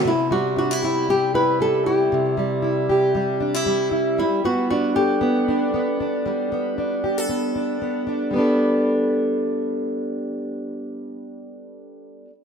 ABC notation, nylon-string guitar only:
X:1
M:4/4
L:1/8
Q:"Swing 16ths" 1/4=116
K:G
V:1 name="Nylon-string guitar"
E F F E G B A G- | G6- G z | E F F G4- G- | G6 z2 |
z8 | z8 |]